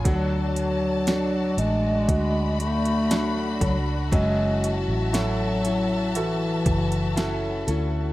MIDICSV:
0, 0, Header, 1, 7, 480
1, 0, Start_track
1, 0, Key_signature, 3, "minor"
1, 0, Tempo, 1016949
1, 25, Time_signature, 4, 2, 24, 8
1, 3837, End_track
2, 0, Start_track
2, 0, Title_t, "String section"
2, 0, Program_c, 0, 48
2, 28, Note_on_c, 0, 74, 59
2, 28, Note_on_c, 0, 81, 69
2, 29, Note_on_c, 0, 66, 66
2, 977, Note_off_c, 0, 81, 0
2, 985, Note_on_c, 0, 83, 75
2, 1928, Note_off_c, 0, 74, 0
2, 1936, Note_off_c, 0, 83, 0
2, 1943, Note_on_c, 0, 81, 72
2, 1945, Note_on_c, 0, 76, 57
2, 3837, Note_off_c, 0, 66, 0
2, 3837, Note_off_c, 0, 76, 0
2, 3837, Note_off_c, 0, 81, 0
2, 3837, End_track
3, 0, Start_track
3, 0, Title_t, "Grand piano"
3, 0, Program_c, 1, 0
3, 0, Control_c, 1, 64, 127
3, 22, Note_on_c, 1, 54, 62
3, 33, Control_c, 1, 64, 0
3, 112, Control_c, 1, 64, 127
3, 506, Note_on_c, 1, 62, 45
3, 509, Note_on_c, 1, 66, 53
3, 972, Note_off_c, 1, 62, 0
3, 973, Note_off_c, 1, 66, 0
3, 987, Note_on_c, 1, 62, 41
3, 987, Note_on_c, 1, 66, 50
3, 1452, Note_off_c, 1, 62, 0
3, 1452, Note_off_c, 1, 66, 0
3, 1466, Note_on_c, 1, 57, 45
3, 1468, Note_on_c, 1, 62, 44
3, 1469, Note_on_c, 1, 66, 49
3, 1925, Note_off_c, 1, 54, 0
3, 1931, Note_off_c, 1, 57, 0
3, 1932, Note_off_c, 1, 62, 0
3, 1933, Note_off_c, 1, 66, 0
3, 1947, Note_on_c, 1, 54, 66
3, 1952, Control_c, 1, 64, 0
3, 2028, Control_c, 1, 64, 127
3, 2423, Note_on_c, 1, 64, 48
3, 2424, Note_on_c, 1, 66, 47
3, 2426, Note_on_c, 1, 69, 54
3, 2890, Note_off_c, 1, 64, 0
3, 2891, Note_off_c, 1, 66, 0
3, 2891, Note_off_c, 1, 69, 0
3, 2906, Note_on_c, 1, 64, 46
3, 2907, Note_on_c, 1, 66, 43
3, 2910, Note_on_c, 1, 69, 53
3, 3372, Note_off_c, 1, 64, 0
3, 3372, Note_off_c, 1, 66, 0
3, 3373, Note_off_c, 1, 69, 0
3, 3383, Note_on_c, 1, 64, 47
3, 3387, Note_on_c, 1, 66, 42
3, 3388, Note_on_c, 1, 69, 52
3, 3837, Note_off_c, 1, 54, 0
3, 3837, Note_off_c, 1, 64, 0
3, 3837, Note_off_c, 1, 66, 0
3, 3837, Note_off_c, 1, 69, 0
3, 3837, End_track
4, 0, Start_track
4, 0, Title_t, "Steel-string acoustic guitar"
4, 0, Program_c, 2, 25
4, 23, Note_on_c, 2, 50, 64
4, 26, Note_on_c, 2, 54, 75
4, 28, Note_on_c, 2, 62, 69
4, 31, Note_on_c, 2, 66, 71
4, 33, Note_on_c, 2, 69, 76
4, 499, Note_off_c, 2, 54, 0
4, 500, Note_off_c, 2, 62, 0
4, 501, Note_on_c, 2, 54, 55
4, 505, Note_off_c, 2, 50, 0
4, 506, Note_on_c, 2, 62, 56
4, 508, Note_off_c, 2, 66, 0
4, 510, Note_on_c, 2, 66, 58
4, 511, Note_off_c, 2, 69, 0
4, 513, Note_on_c, 2, 69, 58
4, 743, Note_off_c, 2, 54, 0
4, 743, Note_off_c, 2, 66, 0
4, 746, Note_off_c, 2, 62, 0
4, 749, Note_on_c, 2, 66, 41
4, 750, Note_off_c, 2, 69, 0
4, 754, Note_on_c, 2, 62, 40
4, 1461, Note_off_c, 2, 62, 0
4, 1462, Note_on_c, 2, 54, 57
4, 1467, Note_on_c, 2, 62, 59
4, 1469, Note_off_c, 2, 66, 0
4, 1471, Note_on_c, 2, 66, 63
4, 1474, Note_on_c, 2, 69, 57
4, 1696, Note_off_c, 2, 69, 0
4, 1701, Note_on_c, 2, 69, 53
4, 1703, Note_off_c, 2, 66, 0
4, 1704, Note_off_c, 2, 54, 0
4, 1706, Note_off_c, 2, 62, 0
4, 1709, Note_on_c, 2, 66, 45
4, 1714, Note_on_c, 2, 62, 46
4, 1942, Note_on_c, 2, 54, 72
4, 1943, Note_off_c, 2, 69, 0
4, 1944, Note_off_c, 2, 62, 0
4, 1946, Note_on_c, 2, 61, 71
4, 1947, Note_off_c, 2, 66, 0
4, 1949, Note_on_c, 2, 64, 82
4, 2415, Note_off_c, 2, 54, 0
4, 2420, Note_off_c, 2, 61, 0
4, 2421, Note_on_c, 2, 54, 61
4, 2424, Note_off_c, 2, 64, 0
4, 2426, Note_on_c, 2, 61, 57
4, 2429, Note_on_c, 2, 64, 63
4, 2433, Note_on_c, 2, 69, 61
4, 2654, Note_off_c, 2, 69, 0
4, 2660, Note_on_c, 2, 69, 49
4, 2661, Note_off_c, 2, 64, 0
4, 2663, Note_off_c, 2, 54, 0
4, 2666, Note_off_c, 2, 61, 0
4, 2666, Note_on_c, 2, 64, 42
4, 2673, Note_on_c, 2, 61, 38
4, 3380, Note_off_c, 2, 61, 0
4, 3381, Note_on_c, 2, 54, 58
4, 3383, Note_off_c, 2, 64, 0
4, 3386, Note_on_c, 2, 61, 67
4, 3389, Note_on_c, 2, 64, 64
4, 3392, Note_off_c, 2, 69, 0
4, 3394, Note_on_c, 2, 69, 68
4, 3614, Note_off_c, 2, 69, 0
4, 3620, Note_on_c, 2, 69, 59
4, 3623, Note_off_c, 2, 54, 0
4, 3623, Note_off_c, 2, 64, 0
4, 3626, Note_off_c, 2, 61, 0
4, 3629, Note_on_c, 2, 64, 53
4, 3634, Note_on_c, 2, 61, 51
4, 3837, Note_off_c, 2, 61, 0
4, 3837, Note_off_c, 2, 64, 0
4, 3837, Note_off_c, 2, 69, 0
4, 3837, End_track
5, 0, Start_track
5, 0, Title_t, "Bass clarinet"
5, 0, Program_c, 3, 71
5, 35, Note_on_c, 3, 54, 98
5, 751, Note_on_c, 3, 56, 109
5, 758, Note_off_c, 3, 54, 0
5, 1226, Note_off_c, 3, 56, 0
5, 1229, Note_on_c, 3, 57, 104
5, 1688, Note_off_c, 3, 57, 0
5, 1708, Note_on_c, 3, 54, 87
5, 1783, Note_off_c, 3, 54, 0
5, 1948, Note_on_c, 3, 56, 109
5, 2280, Note_off_c, 3, 56, 0
5, 2430, Note_on_c, 3, 54, 98
5, 2908, Note_on_c, 3, 52, 89
5, 2916, Note_off_c, 3, 54, 0
5, 3627, Note_off_c, 3, 52, 0
5, 3837, End_track
6, 0, Start_track
6, 0, Title_t, "Fingered electric bass"
6, 0, Program_c, 4, 33
6, 25, Note_on_c, 4, 38, 93
6, 727, Note_off_c, 4, 38, 0
6, 743, Note_on_c, 4, 33, 77
6, 968, Note_off_c, 4, 33, 0
6, 984, Note_on_c, 4, 38, 100
6, 1686, Note_off_c, 4, 38, 0
6, 1706, Note_on_c, 4, 37, 75
6, 1946, Note_on_c, 4, 30, 105
6, 1953, Note_off_c, 4, 37, 0
6, 2287, Note_off_c, 4, 30, 0
6, 2304, Note_on_c, 4, 33, 77
6, 3126, Note_off_c, 4, 33, 0
6, 3143, Note_on_c, 4, 30, 79
6, 3606, Note_off_c, 4, 30, 0
6, 3624, Note_on_c, 4, 38, 89
6, 3837, Note_off_c, 4, 38, 0
6, 3837, End_track
7, 0, Start_track
7, 0, Title_t, "Drums"
7, 25, Note_on_c, 9, 42, 90
7, 26, Note_on_c, 9, 36, 111
7, 72, Note_off_c, 9, 42, 0
7, 73, Note_off_c, 9, 36, 0
7, 266, Note_on_c, 9, 42, 73
7, 313, Note_off_c, 9, 42, 0
7, 505, Note_on_c, 9, 42, 84
7, 509, Note_on_c, 9, 38, 111
7, 553, Note_off_c, 9, 42, 0
7, 556, Note_off_c, 9, 38, 0
7, 746, Note_on_c, 9, 42, 69
7, 793, Note_off_c, 9, 42, 0
7, 985, Note_on_c, 9, 36, 95
7, 985, Note_on_c, 9, 42, 95
7, 1032, Note_off_c, 9, 36, 0
7, 1032, Note_off_c, 9, 42, 0
7, 1227, Note_on_c, 9, 42, 68
7, 1274, Note_off_c, 9, 42, 0
7, 1347, Note_on_c, 9, 42, 52
7, 1395, Note_off_c, 9, 42, 0
7, 1467, Note_on_c, 9, 42, 92
7, 1469, Note_on_c, 9, 38, 107
7, 1515, Note_off_c, 9, 42, 0
7, 1516, Note_off_c, 9, 38, 0
7, 1705, Note_on_c, 9, 36, 91
7, 1705, Note_on_c, 9, 42, 74
7, 1753, Note_off_c, 9, 36, 0
7, 1753, Note_off_c, 9, 42, 0
7, 1946, Note_on_c, 9, 36, 112
7, 1947, Note_on_c, 9, 42, 83
7, 1993, Note_off_c, 9, 36, 0
7, 1995, Note_off_c, 9, 42, 0
7, 2189, Note_on_c, 9, 42, 78
7, 2237, Note_off_c, 9, 42, 0
7, 2426, Note_on_c, 9, 42, 89
7, 2429, Note_on_c, 9, 38, 110
7, 2473, Note_off_c, 9, 42, 0
7, 2476, Note_off_c, 9, 38, 0
7, 2665, Note_on_c, 9, 42, 71
7, 2713, Note_off_c, 9, 42, 0
7, 2904, Note_on_c, 9, 42, 91
7, 2951, Note_off_c, 9, 42, 0
7, 3143, Note_on_c, 9, 42, 67
7, 3144, Note_on_c, 9, 36, 86
7, 3190, Note_off_c, 9, 42, 0
7, 3191, Note_off_c, 9, 36, 0
7, 3265, Note_on_c, 9, 42, 52
7, 3313, Note_off_c, 9, 42, 0
7, 3386, Note_on_c, 9, 42, 92
7, 3387, Note_on_c, 9, 38, 108
7, 3433, Note_off_c, 9, 42, 0
7, 3435, Note_off_c, 9, 38, 0
7, 3624, Note_on_c, 9, 42, 76
7, 3672, Note_off_c, 9, 42, 0
7, 3837, End_track
0, 0, End_of_file